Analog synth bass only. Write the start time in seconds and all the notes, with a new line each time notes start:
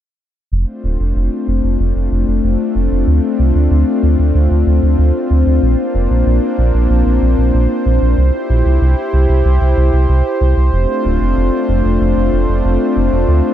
0.52 F1
0.83 D1
0.99 F1
1.15 F1
1.47 F1
1.63 F1
1.79 F1
1.95 F1
2.11 F1
2.27 F1
2.43 F1
2.75 F1
2.91 F1
3.07 D2
3.39 C2
3.55 D2
3.71 D2
4.03 D2
4.19 D2
4.35 D2
4.51 D2
4.67 D2
4.83 D2
4.98 D2
5.30 D2
5.46 D2
5.62 A#1
5.94 F1
6.10 A#1
6.26 A#1
6.58 A#1
6.74 A#1
6.90 A#1
7.06 A#1
7.22 A#1
7.38 A#1
7.54 A#1
7.86 A#1
8.02 A#1
8.18 C2
8.49 A#1
8.65 C2
8.81 C2
9.13 C2
9.29 C2
9.45 C2
9.61 C2
9.77 C2
9.93 C2
10.09 C2
10.41 C2
10.57 C2
10.73 F1
11.05 D1
11.21 F1
11.37 F1
11.68 F1
11.84 F1
12.00 F1
12.16 F1
12.32 F1
12.48 F1
12.64 F1
12.96 F1
13.12 F1
13.28 D2